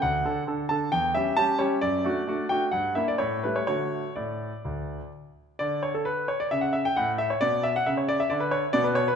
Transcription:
X:1
M:4/4
L:1/16
Q:1/4=133
K:D
V:1 name="Grand piano"
f6 a2 g2 e2 a2 c2 | d6 g2 f2 e d c2 B c | c4 d8 z4 | d2 c A B2 c d e f e g f2 e c |
d2 e f e c d e d B c2 d B c B |]
V:2 name="Grand piano"
D,,2 [D,DA]2 [D,DA]2 [D,DA]2 E,,2 [G,CG]2 [G,CG]2 [G,CG]2 | F,,2 [A,DF]2 [A,DF]2 [A,DF]2 G,,2 [_B,DE]2 A,,2 [G,A,E]2 | [D,A,F]4 A,,4 D,,4 z4 | D,8 C,4 A,,4 |
B,,4 C,4 D,4 B,,4 |]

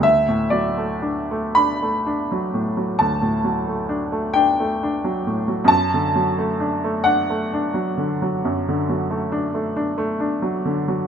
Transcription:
X:1
M:12/8
L:1/16
Q:3/8=44
K:D
V:1 name="Upright piano"
e2 d4 b6 a6 g6 | a6 f16 z2 |]
V:2 name="Upright piano" clef=bass
D,, A,, F, A, D A, D A, D F, A,, F, D,, A,, F, A, D A, D A, D F, A,, F, | F,, D, F, A, D A, D A, D F, D, F, F,, D, F, A, D A, D A, D F, D, F, |]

